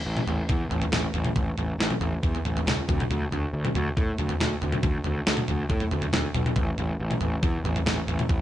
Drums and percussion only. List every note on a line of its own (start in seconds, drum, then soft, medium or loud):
0.17 mid tom medium
0.28 floor tom medium
0.49 kick medium
0.49 floor tom medium
0.71 floor tom medium
0.82 floor tom medium
0.92 snare medium
0.92 floor tom medium
0.92 mid tom medium
1.14 floor tom medium
1.24 mid tom medium
1.36 kick loud
1.36 floor tom medium
1.58 floor tom medium
1.80 snare medium
1.90 mid tom medium
2.01 floor tom medium
2.23 kick loud
2.23 floor tom medium
2.35 floor tom medium
2.45 floor tom medium
2.57 floor tom medium
2.67 snare medium
2.67 floor tom medium
2.67 mid tom medium
2.89 kick medium
2.89 floor tom medium
2.89 mid tom medium
3.00 mid tom medium
3.11 floor tom medium
3.32 floor tom medium
3.65 mid tom medium
3.75 floor tom medium
3.97 kick loud
3.97 floor tom medium
4.18 floor tom medium
4.29 floor tom medium
4.40 snare medium
4.40 floor tom medium
4.40 mid tom medium
4.62 floor tom medium
4.72 mid tom medium
4.83 kick loud
4.83 floor tom medium
5.04 floor tom medium
5.27 snare medium
5.37 mid tom medium
5.48 floor tom medium
5.70 kick loud
5.70 floor tom medium
5.80 floor tom medium
5.91 floor tom medium
6.02 floor tom medium
6.13 snare medium
6.13 floor tom medium
6.13 mid tom medium
6.34 floor tom medium
6.34 mid tom medium
6.46 mid tom medium
6.56 kick loud
6.56 floor tom medium
6.78 floor tom medium
7.11 mid tom medium
7.21 floor tom medium
7.43 kick loud
7.43 floor tom medium
7.65 floor tom medium
7.76 floor tom medium
7.86 snare medium
7.86 floor tom medium
7.86 mid tom medium
8.08 floor tom medium
8.19 mid tom medium
8.29 kick loud
8.29 floor tom medium